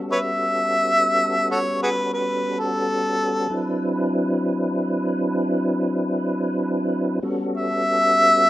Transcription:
Already playing: G3 B3 C#4 F#4 A4
0.12 B4 C#5 E5
1.51 F#4 A4 C#5
1.83 F#4 G#4 B4
2.14 B4
2.60 A4
3.50 F#3 C4 D4 E4 B4
7.22 G3 B3 C#4 F#4 A4
7.57 E5

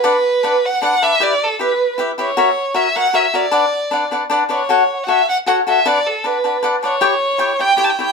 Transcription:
Already playing: B4
0.04 D4 B4 D5 F#5
0.43 D4 B4 D5 F#5
0.65 F#5
0.82 D4 B4 D5 F#5
1.02 D4 B4 D5 E5 F#5
1.20 E4 G4 B4 D5 E5
1.44 A4
1.59 E4 G4 B4 E5
1.98 E4 G4 B4 E5
2.18 E4 G4 B4 C#5 E5
2.37 F#4 A#4 C#5 E5
2.74 F#4 A#4 C#5 E5
2.95 F#4 A#4 C#5 E5 F#5
3.13 F#4 A#4 C#5 E5
3.34 F#4 A#4 C#5 D5 E5
3.51 D4 B4 D5 F#5
3.91 D4 B4 D5 F#5
4.11 D4 B4 D5 F#5
4.30 D4 B4 D5 F#5
4.49 D4 B4 C#5 D5 F#5
4.69 F#4 A4 C#5 F#5
5.04 F#4 F#5
5.08 A4 C#5 E5 F#5
5.29 F#5
5.46 F#4 A4 C#5 F#5
5.67 F#4 A4 C#5 E5 F#5
5.85 D4 B4 D5 F#5
6.07 A4
6.24 D4 B4 D5 F#5
6.44 D4 B4 D5 F#5
6.63 D4 B4 D5 F#5
6.83 D4 B4 C#5 D5 F#5
7.01 E4 G4 C#5 G5
7.38 E4 G4 C#5 G5
7.59 E4 G4 C#5 G5
7.77 E4 G4 C#5 G5
7.84 A5
7.90 G5
7.99 E4 G4 C#5 G5
8.05 G5

